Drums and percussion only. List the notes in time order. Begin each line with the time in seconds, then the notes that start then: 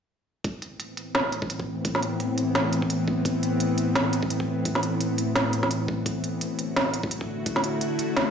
0.44 kick, closed hi-hat
0.62 closed hi-hat
0.80 closed hi-hat
0.97 closed hi-hat
1.15 snare, closed hi-hat
1.32 closed hi-hat
1.42 kick
1.50 closed hi-hat
1.60 kick
1.85 kick, closed hi-hat
1.95 snare
2.02 closed hi-hat
2.20 closed hi-hat
2.38 closed hi-hat
2.55 snare, closed hi-hat
2.73 closed hi-hat
2.82 kick
2.90 closed hi-hat
3.08 kick
3.25 kick, closed hi-hat
3.43 closed hi-hat
3.60 closed hi-hat
3.78 closed hi-hat
3.95 snare, closed hi-hat
4.13 closed hi-hat
4.23 kick
4.30 closed hi-hat
4.40 kick
4.65 kick, closed hi-hat
4.75 snare
4.83 closed hi-hat
5.01 closed hi-hat
5.18 closed hi-hat
5.36 snare, closed hi-hat
5.53 closed hi-hat
5.63 kick, snare
5.71 closed hi-hat
5.88 kick
6.06 kick, closed hi-hat
6.24 closed hi-hat
6.41 closed hi-hat
6.59 closed hi-hat
6.76 snare, closed hi-hat
6.94 closed hi-hat
7.03 kick
7.11 closed hi-hat
7.21 kick
7.46 kick, closed hi-hat
7.56 snare
7.64 closed hi-hat
7.81 closed hi-hat
7.99 closed hi-hat
8.17 snare, closed hi-hat